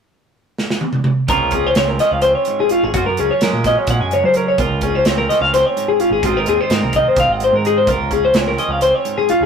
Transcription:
0.58 snare
0.70 snare
0.81 high tom
0.93 mid tom
1.04 mid tom
1.28 C#2 C#3 F3 C4 C#4 F4 A#4, kick, closed hi-hat
1.51 C#4 G#4, kick, closed hi-hat
1.67 C5
1.75 C#2 C4 C#5, snare, closed hi-hat
1.89 A#4
1.99 F3 C#4 D#5, snare, closed hi-hat
2.11 C#2 F5
2.22 C4 C5, closed hi-hat
2.35 C#5
2.45 G#2, closed hi-hat
2.60 G#4
2.69 C#4 F4, closed hi-hat
2.83 G#1 G#4
2.94 F#2 F4 F#4, kick, closed hi-hat
3.06 F#2 A#4
3.17 C#2 C#4 G#4, closed hi-hat
3.31 C#5
3.41 F#3 G#3 A#4, snare, closed hi-hat
3.53 A#2
3.64 F#3 D#5, kick, snare, closed hi-hat
3.68 C#4
3.78 C#5
3.87 A#2 G#3 F#5, kick, closed hi-hat
4.00 F#2 G#5
4.11 C#3 C#5, closed hi-hat
4.24 F#3 C5
4.34 C#4 A#4, closed hi-hat
4.48 C#5
4.58 C#2 C#3 F4 A#4, kick, closed hi-hat
4.81 C#4 G#4, kick, closed hi-hat
4.95 C5
5.05 C#2 C4 C#5, snare, closed hi-hat
5.18 A#4
5.29 F3 C#4 D#5, snare, closed hi-hat
5.41 C#2 F5
5.54 C4 C5, snare, closed hi-hat
5.66 C#5
5.77 G#2, closed hi-hat
5.88 G#4
6.00 C#4 F4, closed hi-hat
6.10 G#1 G#4
6.23 G#1 G#2 D#3 C4 D#4 F4 F#4, kick, closed hi-hat
6.34 G#1 A#4
6.46 D#2 C4 G#4, closed hi-hat
6.60 D#4 C5
6.70 G#2 C4 A#4, snare, closed hi-hat
6.83 C2
6.93 D#3 D#5, kick, closed hi-hat
6.97 D#4
7.08 C5
7.16 C2 C4 F5, kick, closed hi-hat
7.28 G#1 F#5
7.40 G#2 C5, closed hi-hat
7.52 G#2 A#4
7.65 D#4 G#4, closed hi-hat
7.78 C5
7.87 C#2 C#3 F4 A#4, kick, closed hi-hat
8.11 C#4 G#4, kick, closed hi-hat
8.25 C5
8.34 C#2 C4 C#5, snare, closed hi-hat
8.48 A#4
8.57 F3 C#4 D#5, closed hi-hat
8.68 C#2 F5
8.81 C4 C5, closed hi-hat
8.95 C#5
9.05 G#2, closed hi-hat
9.18 G#4
9.29 C#4 F4, closed hi-hat
9.41 C#2

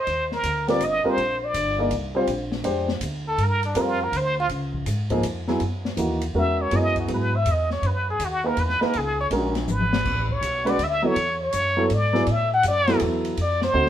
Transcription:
Already playing: C5
0.07 D#2, ride
0.32 A#4, snare
0.43 D2, hi-hat pedal, ride
0.67 G3 C4 F4 A#4 D5, snare, ride
0.81 G1 D#5, hi-hat pedal, ride
1.04 G3 C4 F4 A#4, muted upright bass stroke
1.09 C5
1.17 A#1, ride
1.44 D5
1.54 G1, hi-hat pedal, ride
1.79 A#3 D#4 G#4 D5
1.91 C2, ride
2.15 G3 C4 F4 C5
2.27 A#1, ride
2.52 snare
2.64 F2 G#3 D4 G4 C5, ride
2.88 snare
3.01 D2, hi-hat pedal, ride
3.28 A4
3.38 G2, ride
3.44 A#4
3.63 D4, ride
3.75 F2 G3 C4 F4 A#4, hi-hat pedal, ride
3.81 F4
4.04 A#4
4.12 D2, ride
4.17 C5
4.40 F4
4.49 C#2, ride
4.74 kick
4.86 G#2, hi-hat pedal, ride
5.10 F3 A#3 D#4 G#4, kick, ride
5.23 F2, hi-hat pedal, ride
5.48 F#3 B3 E4 G#4, snare
5.60 F#2, ride
5.85 snare
5.97 D#2 E3 A#3 D#4 F#4, hi-hat pedal, ride
6.21 ride
6.34 E2 G#3 C#4 F#4 A#4
6.39 E5
6.62 C#5
6.71 F#2 F#3 B3 E4 G#4, ride
6.76 D#5
6.96 F#4, kick, ride
7.08 G#2 F#3 B3 E4 G#4, ride
7.14 B4
7.36 E5
7.46 E2, hi-hat pedal, ride
7.52 D#5
7.70 C#5, snare
7.82 F#2, ride
7.87 B4
8.10 G#4
8.19 D#2, hi-hat pedal, ride
8.25 F#4
8.44 A#3 D#4 G#4 A#4 B4
8.57 E2 B4, ride
8.69 snare
8.81 A#3 D#4 G#4 A#4 B4, muted upright bass stroke, snare
8.93 C#2, ride
8.98 G#4
9.20 C#5
9.31 A#1 G#3 C#4 F#4 A#4, ride
9.55 snare, ride
9.68 G#1, hi-hat pedal, high tom
9.72 B4
9.80 high tom
9.93 snare
10.05 A1, kick, crash
10.29 C#5, kick
10.41 B1, hi-hat pedal, ride
10.65 G#3 C#4 F#4 B4, ride
10.69 D5
10.78 D2, ride
10.84 E5
11.02 F#3 B3 E4 A4 C#5
11.15 E2, ride
11.44 C#5
11.53 F#2, hi-hat pedal, ride
11.77 F#3 B3 E4 A4
11.90 G#2 D5, ride
12.13 F#3 B3 E4 G#4, snare
12.27 A2, ride
12.31 E5
12.54 F#5
12.63 F#2, hi-hat pedal, ride
12.68 D5
12.87 F#3 B3 E4 A4, snare, ride
13.00 E2, ride
13.25 ride
13.37 F2, ride
13.42 D5
13.61 C5, snare
13.73 D2 A3 C4 D#4 F#4

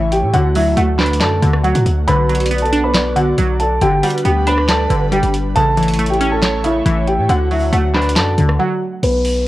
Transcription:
Already playing: A1 C#3 E3 A3 C#4 E4 C#5
0.12 G4 G5, closed hi-hat
0.23 A2
0.34 D2 D3 A3 F#4 F#5, closed hi-hat
0.55 F#3 E4 E5, open hi-hat
0.77 D2 A3 F#4 F#5, closed hi-hat
0.99 D4 B4 B5, snare, clap, closed hi-hat
1.06 closed hi-hat
1.13 closed hi-hat
1.20 F#2 A4 D5 A5, snare, clap, closed hi-hat
1.42 D2 D3, closed hi-hat
1.53 cross-stick
1.63 F#3 F#4 F#5, closed hi-hat
1.75 A2, closed hi-hat
1.86 D2, closed hi-hat
2.07 B1 D3 B3 B4 D5 B5, closed hi-hat
2.29 F#3, closed hi-hat
2.35 closed hi-hat
2.40 closed hi-hat
2.46 closed hi-hat
2.51 B3, closed hi-hat
2.58 A5, closed hi-hat
2.63 A4, closed hi-hat
2.73 D4, closed hi-hat
2.84 B4 B5
2.94 D5, snare, clap, closed hi-hat
3.16 D3 F#4 F#5, closed hi-hat
3.38 B1 F#3, closed hi-hat
3.60 A4 A5, closed hi-hat
3.81 G1 D3 G3 D4 G4 B4 G5, closed hi-hat
4.03 G3 F#4 F#5, closed hi-hat, open hi-hat
4.10 closed hi-hat
4.18 closed hi-hat
4.25 D2 B3 G4 G5, closed hi-hat
4.47 D4 B4 B5, closed hi-hat
4.58 cross-stick
4.68 A4 D5 A5, snare, clap, closed hi-hat
4.90 G1 D3, closed hi-hat
5.12 G3 G4 G5, closed hi-hat
5.23 G1, closed hi-hat
5.34 closed hi-hat
5.55 A1 C#3 A3 E4 A4 C#5 A5, closed hi-hat
5.77 E3, closed hi-hat
5.83 closed hi-hat
5.88 closed hi-hat
5.93 closed hi-hat
5.99 A3, closed hi-hat
6.06 G5, closed hi-hat
6.11 G4, closed hi-hat
6.21 C#4, closed hi-hat
6.32 A4 A5
6.42 C#5, snare, clap, closed hi-hat
6.64 C#3 E4 E5, closed hi-hat
6.86 A1 E3, closed hi-hat
7.08 G4 G5, closed hi-hat
7.18 A2
7.29 D2 D3 F#4 F#5, closed hi-hat
7.51 F#3 E4 E5, open hi-hat
7.73 D2 A3 F#4 F#5, closed hi-hat
7.94 D4 B4 B5, snare, clap, closed hi-hat
8.02 closed hi-hat
8.09 closed hi-hat
8.16 F#2 A4 D5 A5, snare, clap, closed hi-hat
8.38 D2 D3, closed hi-hat
8.49 cross-stick
8.59 F#3 F#4 F#5
9.03 B1 B3 B4, closed hi-hat, downlifter
9.25 open hi-hat

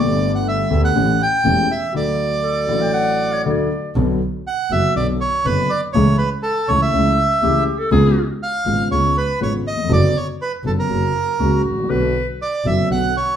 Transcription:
Already playing: G1 G2 D3 A3 B3 D5
0.00 G4
0.35 F#5
0.48 E5
0.70 D2 D3 A3 B3 G4
0.85 F#5
0.95 A1 A2 E3 A3 C#4 G4
1.22 G5
1.45 E1 E2 E3 A3 C#4 G4
1.71 E5
1.92 D2 D3 F#3 A3 D4
1.96 A4 D5
2.43 A4
2.67 A1 A2 F#3 A3 D4
2.71 A4
2.81 G5
2.94 F#5
3.33 C#5
3.45 D2 D3 F#3 A3 D4 A4 D5
3.96 B1 B2 D3 F#3 B3 F#4
4.47 F#5
4.70 F#1 F#2 D3 F#3 B3 F#4 E5
4.95 B1 B2 D3 F#3 B3 F#4 D5
5.21 C#5
5.45 F#1 F#2 D3 F#3 B3 F#4 B4
5.70 D5
5.93 C#2 C#3 E3 A3 E4 C#5
6.18 B4
6.43 A4
6.68 C#2 C#3 E3 A3 E4 C#5
6.82 E5
6.93 C#2 C#3 E3 A3 E4
7.43 C#2 C#3 E3 A3 E4 G4
7.79 A4
7.91 C#2 C#3 G#3 B3 F4 G#4
8.43 F5
8.65 G#1 G#2 C#3 G#3 B3 F4
8.91 C#2 C#3 G#3 B3 F4 C#5
9.17 B4
9.40 G#1 G#2 C#3 G#3 B3 F4 C#5
9.67 D#5
9.72 D#2
9.77 E2
9.84 F2
9.89 F#1 F#2 D3 F#3 B3 F#4 D5
10.17 C#5
10.42 B4
10.64 F#1 F#2 D3 F#3 B3 F#4 A4
10.79 A#4
10.89 F#1 F#2 C#3 F#3 A#3 F#4
11.39 C#2 C#3 F#3 A#3 F#4
11.65 A1
11.71 G#1
11.78 A1
11.84 A#1
11.90 B1 B2 D3 F#3 B3 F#4 B4
12.42 D5
12.64 F#1 F#2 D3 F#3 B3 F#4 E5
12.90 B1 B2 D3 F#3 B3 F#4 F#5
13.17 C#5

